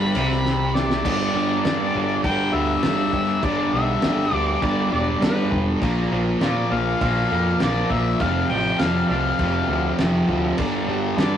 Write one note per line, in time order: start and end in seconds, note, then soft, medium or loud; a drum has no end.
0.00 0.13 G1 loud
0.00 0.14 G2 loud
0.00 0.72 B5 loud
0.15 1.01 C2 medium
0.15 1.04 C3 loud
0.15 crash medium
0.31 snare soft
0.45 snare medium
0.75 2.20 D5 loud
0.75 snare loud
0.90 snare medium
1.04 1.26 G1 medium
1.04 1.34 G2 loud
1.04 1.34 D3 loud
1.04 1.35 G3 loud
1.04 kick loud
1.04 crash loud
1.04 crash medium
1.34 1.56 G1 medium
1.34 1.64 G2 medium
1.34 1.64 D3 medium
1.34 1.66 G3 medium
1.65 1.86 G2 medium
1.65 1.94 G2 medium
1.65 1.94 D3 medium
1.65 1.96 G3 medium
1.65 snare loud
1.65 crash medium
1.94 2.16 G1 medium
1.94 2.22 G2 medium
1.94 2.24 D3 medium
1.94 2.24 G3 medium
2.23 2.46 G1 medium
2.23 2.51 G2 loud
2.23 2.52 D3 loud
2.23 2.53 G3 loud
2.23 2.55 G5 loud
2.23 kick loud
2.23 crash medium
2.52 2.75 D2 medium
2.52 2.81 G2 medium
2.52 2.82 D3 medium
2.52 2.83 G3 loud
2.52 3.46 E5 loud
2.82 3.05 G1 medium
2.82 3.12 G2 medium
2.82 3.13 D3 loud
2.82 3.14 G3 medium
2.82 snare loud
2.82 crash medium
3.13 3.35 G1 medium
3.13 3.41 G2 medium
3.13 3.42 D3 medium
3.13 3.44 G3 medium
3.13 kick medium
3.43 3.65 G1 loud
3.43 3.72 G2 loud
3.43 3.73 D3 loud
3.43 3.74 G3 loud
3.43 3.73 D5 medium
3.43 kick loud
3.43 crash medium
3.73 3.95 B1 loud
3.73 4.02 G2 medium
3.73 4.03 D3 loud
3.73 4.04 G3 medium
3.73 4.34 E5 loud
4.02 4.25 G1 medium
4.02 4.30 G2 medium
4.02 4.31 D3 medium
4.02 4.32 G3 medium
4.02 snare loud
4.02 crash medium
4.32 4.54 D2 medium
4.32 4.60 G2 medium
4.32 4.61 D3 medium
4.32 4.62 G3 loud
4.32 4.63 D5 loud
4.61 4.84 G1 loud
4.61 4.89 G2 loud
4.61 4.90 D3 loud
4.61 4.90 G3 loud
4.61 4.92 D5 loud
4.61 kick loud
4.61 crash medium
4.90 5.14 E1 medium
4.90 5.19 G2 medium
4.90 5.21 D3 medium
4.90 5.22 G3 loud
4.90 5.20 D5 medium
5.20 5.43 G1 medium
5.20 5.48 G2 medium
5.20 5.50 D3 medium
5.20 5.50 G3 loud
5.20 snare loud
5.20 crash medium
5.24 5.65 B4 medium
5.50 5.74 E1 loud
5.50 5.79 G2 medium
5.50 5.80 D3 medium
5.50 5.80 G3 loud
5.50 kick medium
5.82 6.04 A#1 loud
5.82 6.11 A#2 loud
5.82 6.12 F3 loud
5.82 6.12 A#3 loud
5.82 kick loud
5.82 crash medium
6.11 6.33 A#1 medium
6.11 6.41 A#2 medium
6.11 6.42 F3 medium
6.11 6.42 A#3 loud
6.41 6.63 A#2 loud
6.41 6.69 A#2 medium
6.41 6.71 F3 loud
6.41 6.71 A#3 loud
6.41 6.75 D5 medium
6.41 snare loud
6.41 crash medium
6.70 6.93 A#1 loud
6.70 7.00 A#2 medium
6.70 7.01 F3 loud
6.70 7.02 A#3 loud
6.70 7.01 F5 loud
7.01 7.23 A#1 loud
7.01 7.29 A#2 loud
7.01 7.30 F3 loud
7.01 7.31 A#3 loud
7.01 7.57 F5 loud
7.01 kick loud
7.01 crash medium
7.30 7.52 F2 medium
7.30 7.58 A#2 medium
7.30 7.60 F3 loud
7.30 7.61 A#3 loud
7.59 7.82 A#1 medium
7.59 7.89 A#2 medium
7.59 7.90 F3 loud
7.59 7.91 A#3 loud
7.59 snare loud
7.59 crash medium
7.63 7.94 D5 loud
7.90 8.12 A#1 medium
7.90 8.19 A#2 medium
7.90 8.19 F3 loud
7.90 8.19 A#3 medium
7.90 8.20 E5 loud
7.90 kick medium
8.20 8.42 F1 medium
8.20 8.50 F2 loud
8.20 8.51 C3 loud
8.20 8.52 F3 loud
8.20 8.52 F5 loud
8.20 kick loud
8.20 crash medium
8.49 8.71 A1 medium
8.49 8.80 F2 medium
8.49 8.82 C3 medium
8.49 8.82 F3 loud
8.49 8.81 G5 loud
8.79 9.01 F1 medium
8.79 9.10 F2 medium
8.79 9.11 C3 medium
8.79 9.12 F3 medium
8.79 9.09 F5 loud
8.79 snare loud
8.79 crash medium
9.09 9.31 C2 loud
9.09 9.38 F2 medium
9.09 9.40 C3 medium
9.09 9.41 F3 loud
9.09 9.16 D5 medium
9.09 9.95 F5 loud
9.39 9.61 F1 medium
9.39 9.69 F2 loud
9.39 9.70 C3 loud
9.39 9.70 F3 loud
9.39 kick loud
9.39 crash medium
9.68 9.90 D2 medium
9.68 9.98 F2 medium
9.68 10.00 C3 loud
9.68 10.00 F3 loud
9.98 10.20 F1 medium
9.98 10.28 F2 medium
9.98 10.29 C3 medium
9.98 10.30 F3 medium
9.98 snare loud
9.98 crash medium
10.28 10.50 D2 medium
10.28 10.57 F2 medium
10.28 10.58 C3 medium
10.28 10.58 F3 medium
10.28 kick medium
10.57 10.80 G1 medium
10.57 10.88 G2 loud
10.57 10.88 D3 loud
10.57 10.89 G3 loud
10.57 kick loud
10.57 crash medium
10.87 11.09 G1 medium
10.87 11.17 G2 medium
10.87 11.18 D3 medium
10.87 11.19 G3 medium
11.17 11.37 G2 medium
11.17 11.37 D3 medium
11.17 11.37 G3 medium
11.17 snare loud
11.17 crash medium
11.21 11.37 D5 loud